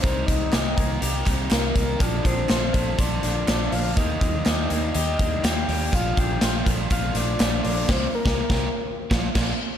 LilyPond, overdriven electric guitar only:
\new Staff \with { instrumentName = "Overdriven electric guitar" } { \time 4/4 \key bes \major \tempo 4 = 122 <c g bes ees' bes'>4 <g bes ees' bes'>8 <bes ees' bes'>8 <c g bes ees' bes'>4 <g bes ees' bes'>8 <bes ees' bes'>8 | <bes, d f bes d' a'>4 <f bes d' a'>8 <f bes d' a'>8 <bes, d f bes d' a'>4 <f bes d' a'>4 | <ees g bes g'>4 <g bes d' g'>8 <bes d' g'>8 <ees g bes g'>4 <g bes d' g'>8 <bes d' g'>8 | <bes, f a d' f'>4 <f a d' f'>4 <bes, f a d' f'>4 <f a d' f'>4 |
<c ees bes c' g'>8 r16 <ees bes c' g'>8 <ees bes c' g'>8 r8. <bes, f bes d' f'>8 <f bes d' f'>8 r8 | }